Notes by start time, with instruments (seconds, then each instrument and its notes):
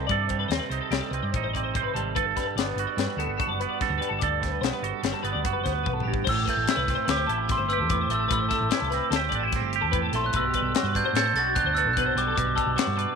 Already playing: clean electric guitar G3
0.07 fingered electric bass G2, clean electric guitar C3 D5, kick, closed hi-hat
0.11 clean electric guitar A4
0.28 clean electric guitar G3 C5, kick, closed hi-hat
0.39 clean electric guitar B4
0.48 fingered electric bass D#2, clean electric guitar C4 C5, snare, closed hi-hat
0.59 clean electric guitar B4
0.70 fingered electric bass C2, clean electric guitar D#4 C5, closed hi-hat
0.81 clean electric guitar A4
0.90 fingered electric bass C2, clean electric guitar G3 G4, snare, closed hi-hat
1.00 clean electric guitar A4
1.10 fingered electric bass C2, clean electric guitar C4 B4, closed hi-hat
1.22 fingered electric bass G2, clean electric guitar D5
1.32 fingered electric bass A1, clean electric guitar C5, kick, closed hi-hat
1.36 clean electric guitar D#4
1.43 clean electric guitar C5
1.53 clean electric guitar C4 D5, kick, closed hi-hat
1.63 clean electric guitar C5
1.74 clean electric guitar C3 C5, kick, closed hi-hat
1.83 clean electric guitar B4
1.94 fingered electric bass G#1, clean electric guitar G3 A4, closed hi-hat
2.15 fingered electric bass G1, clean electric guitar G2 A4 B4, kick, closed hi-hat
2.25 clean electric guitar A4
2.36 clean electric guitar G3 B4, kick, snare, closed hi-hat
2.47 clean electric guitar A4
2.55 fingered electric bass G1, clean electric guitar B3 D5, snare, closed hi-hat
2.66 clean electric guitar B4
2.76 fingered electric bass G1, clean electric guitar F#4, closed hi-hat
2.87 clean electric guitar D5
2.96 fingered electric bass G2, clean electric guitar G3 B4, snare, closed hi-hat
3.17 fingered electric bass D2, clean electric guitar B3 A4, closed hi-hat
3.27 fingered electric bass G1
3.37 clean electric guitar F#4 A4, kick, closed hi-hat
3.47 fingered electric bass F#1, clean electric guitar D5
3.60 clean electric guitar B3 B4, closed hi-hat
3.69 clean electric guitar D5
3.79 clean electric guitar G2 A4 B4, kick, snare, closed hi-hat
3.89 fingered electric bass D2, clean electric guitar C5
3.98 clean electric guitar G3 B4
4.02 closed hi-hat
4.08 fingered electric bass G1, clean electric guitar A4
4.19 fingered electric bass D2, clean electric guitar D5, kick, closed hi-hat
4.23 clean electric guitar G2 A4
4.40 clean electric guitar G3 C5, kick, closed hi-hat
4.44 snare
4.51 clean electric guitar B4
4.61 fingered electric bass B1, clean electric guitar B3 C5, snare, closed hi-hat
4.73 clean electric guitar B4
4.82 fingered electric bass G1, clean electric guitar F#4 C5, closed hi-hat
4.92 clean electric guitar A4
5.01 fingered electric bass G1, clean electric guitar G3 G4, snare, closed hi-hat
5.12 clean electric guitar A4
5.23 fingered electric bass G1, clean electric guitar B3 B4, closed hi-hat
5.32 fingered electric bass D2, clean electric guitar D5
5.43 fingered electric bass F#1, clean electric guitar F#4 B4, kick, closed hi-hat
5.53 clean electric guitar B4
5.64 fingered electric bass D2, clean electric guitar B3 C5, kick, snare, closed hi-hat
5.73 clean electric guitar B4
5.83 fingered electric bass B1, clean electric guitar B4, kick, high tom
5.93 clean electric guitar A4
6.00 clean electric guitar G4, mid tom
6.05 fingered electric bass A1, clean electric guitar G2
6.14 kick
6.24 fingered electric bass A1, clean electric guitar C5, kick, crash
6.29 clean electric guitar A2, glockenspiel E6
6.34 clean electric guitar G4
6.45 clean electric guitar A3 B4, kick, closed hi-hat
6.50 clean electric guitar A4, glockenspiel G6
6.57 fingered electric bass A1
6.64 clean electric guitar G4, closed hi-hat
6.69 clean electric guitar E4, glockenspiel E6, snare
6.76 fingered electric bass C2, clean electric guitar B4
6.88 clean electric guitar C4, kick, snare, closed hi-hat
6.95 clean electric guitar C5
7.05 fingered electric bass D2, clean electric guitar B4, closed hi-hat
7.09 clean electric guitar G4, glockenspiel D6, snare
7.17 clean electric guitar C5
7.26 fingered electric bass A1, clean electric guitar E4 A4, closed hi-hat
7.38 clean electric guitar F#4
7.48 clean electric guitar C4 G4, glockenspiel C6, kick, snare, closed hi-hat
7.57 fingered electric bass G1, clean electric guitar C5
7.69 clean electric guitar B4, glockenspiel E6, closed hi-hat
7.73 clean electric guitar G4
7.79 fingered electric bass E2, clean electric guitar A4
7.90 clean electric guitar A2 B4, glockenspiel D6, kick, closed hi-hat
8.01 clean electric guitar C5
8.09 fingered electric bass A1, clean electric guitar A3 C5, closed hi-hat
8.14 glockenspiel E6
8.19 clean electric guitar A4
8.28 fingered electric bass A1, clean electric guitar A2 B4, kick, closed hi-hat
8.33 glockenspiel E6
8.39 clean electric guitar C5
8.49 clean electric guitar A3 A4, glockenspiel E6, kick, snare, closed hi-hat
8.61 fingered electric bass A1
8.69 clean electric guitar B4, snare, closed hi-hat
8.73 clean electric guitar E4
8.79 fingered electric bass C2, clean electric guitar A4
8.90 clean electric guitar C4 B4, snare, closed hi-hat
9.10 fingered electric bass D2, clean electric guitar A4, snare, closed hi-hat
9.16 clean electric guitar G4 C5
9.29 fingered electric bass A1, clean electric guitar D5, kick, closed hi-hat
9.35 clean electric guitar D4
9.39 clean electric guitar E4 F#4
9.52 clean electric guitar C4, kick, snare, closed hi-hat
9.60 fingered electric bass G1, clean electric guitar G4
9.73 clean electric guitar G4, closed hi-hat
9.81 fingered electric bass E2, clean electric guitar A4
9.91 clean electric guitar A2 B4, kick, closed hi-hat
10.02 clean electric guitar A4
10.12 fingered electric bass A#1, clean electric guitar A3 A4, snare, closed hi-hat
10.16 glockenspiel C6
10.24 clean electric guitar C5, glockenspiel F#6
10.33 fingered electric bass B1, clean electric guitar B2 B4, glockenspiel E6, kick, closed hi-hat
10.45 clean electric guitar G4
10.54 clean electric guitar G3 B4, kick, closed hi-hat
10.62 fingered electric bass B1, clean electric guitar A4
10.75 clean electric guitar F#4 G4, snare, closed hi-hat
10.83 fingered electric bass G2, clean electric guitar B4
10.95 clean electric guitar D4, glockenspiel G6, kick, snare, closed hi-hat
11.05 clean electric guitar C5
11.13 fingered electric bass A2, clean electric guitar A4 B4, glockenspiel G6, snare, closed hi-hat
11.25 clean electric guitar C5
11.34 fingered electric bass B1, clean electric guitar A4, glockenspiel A6, snare, closed hi-hat
11.38 clean electric guitar F#4
11.46 clean electric guitar F#4
11.55 clean electric guitar D4 G4, glockenspiel F#6, kick, closed hi-hat
11.64 fingered electric bass D2, clean electric guitar C5
11.75 clean electric guitar A4 B4, glockenspiel E6, closed hi-hat
11.85 fingered electric bass B1, clean electric guitar A4
11.93 glockenspiel F#6, kick, closed hi-hat
11.98 clean electric guitar B2 B4
12.06 clean electric guitar C5
12.15 fingered electric bass B1, clean electric guitar G3 C5, glockenspiel D6, closed hi-hat
12.27 clean electric guitar A4
12.36 fingered electric bass B1, clean electric guitar B2 B4, glockenspiel D6, kick, closed hi-hat
12.46 clean electric guitar C5
12.56 clean electric guitar G3 A4, glockenspiel E6, kick, closed hi-hat
12.66 fingered electric bass B1
12.76 clean electric guitar F#4 B4, glockenspiel D6, snare, closed hi-hat
12.86 fingered electric bass G2, clean electric guitar A4
12.96 clean electric guitar D4 B4, closed hi-hat